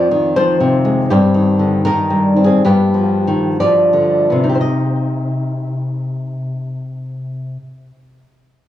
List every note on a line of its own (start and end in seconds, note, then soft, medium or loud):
0.00 1.03 F2 medium
0.00 0.11 F3 soft
0.00 0.31 F4 medium
0.00 0.32 D5 medium
0.11 1.08 D#3 soft
0.36 0.60 F3 medium
0.36 1.05 F4 medium
0.36 1.05 C5 medium
0.60 1.08 C3 soft
0.85 1.08 G#3 soft
1.10 2.59 G2 medium
1.10 1.80 C4 medium
1.10 1.81 G4 medium
1.34 1.84 D#3 soft
1.59 1.84 D3 soft
1.85 2.63 D#3 medium
1.85 2.36 D#4 medium
1.85 2.40 A#4 medium
2.10 2.63 G3 soft
2.36 2.45 C4 soft
2.44 2.63 C4 soft
2.44 2.63 G#4 medium
2.65 4.32 G2 medium
2.65 3.55 B3 soft
2.65 3.55 G4 medium
2.94 3.59 F3 soft
3.27 3.60 D#3 soft
3.60 4.62 F3 soft
3.60 4.43 F4 soft
3.60 4.55 D5 medium
3.93 4.61 D3 soft
4.30 7.57 C3 soft
4.30 4.49 B3 soft
4.44 7.68 D#4 soft
4.49 7.74 G4 soft
4.55 4.60 C5 soft
4.61 7.85 D#5 soft